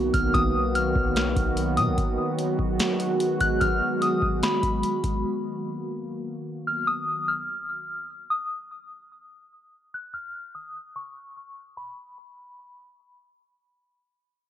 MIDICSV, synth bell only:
0, 0, Header, 1, 2, 480
1, 0, Start_track
1, 0, Tempo, 408163
1, 406, Time_signature, 4, 2, 24, 8
1, 17044, End_track
2, 0, Start_track
2, 0, Title_t, "Synth bell"
2, 0, Program_c, 0, 98
2, 161, Note_on_c, 0, 89, 73
2, 391, Note_off_c, 0, 89, 0
2, 400, Note_on_c, 0, 87, 101
2, 854, Note_off_c, 0, 87, 0
2, 886, Note_on_c, 0, 89, 79
2, 2039, Note_off_c, 0, 89, 0
2, 2082, Note_on_c, 0, 87, 78
2, 2312, Note_off_c, 0, 87, 0
2, 4008, Note_on_c, 0, 90, 84
2, 4235, Note_off_c, 0, 90, 0
2, 4240, Note_on_c, 0, 89, 90
2, 4694, Note_off_c, 0, 89, 0
2, 4724, Note_on_c, 0, 87, 75
2, 5176, Note_off_c, 0, 87, 0
2, 5213, Note_on_c, 0, 83, 78
2, 6122, Note_off_c, 0, 83, 0
2, 7847, Note_on_c, 0, 89, 70
2, 8074, Note_off_c, 0, 89, 0
2, 8083, Note_on_c, 0, 87, 99
2, 8536, Note_off_c, 0, 87, 0
2, 8564, Note_on_c, 0, 89, 77
2, 9718, Note_off_c, 0, 89, 0
2, 9765, Note_on_c, 0, 87, 83
2, 9993, Note_off_c, 0, 87, 0
2, 11691, Note_on_c, 0, 90, 72
2, 11916, Note_off_c, 0, 90, 0
2, 11921, Note_on_c, 0, 89, 99
2, 12374, Note_off_c, 0, 89, 0
2, 12404, Note_on_c, 0, 87, 77
2, 12856, Note_off_c, 0, 87, 0
2, 12887, Note_on_c, 0, 85, 77
2, 13799, Note_off_c, 0, 85, 0
2, 13843, Note_on_c, 0, 83, 75
2, 15237, Note_off_c, 0, 83, 0
2, 17044, End_track
0, 0, End_of_file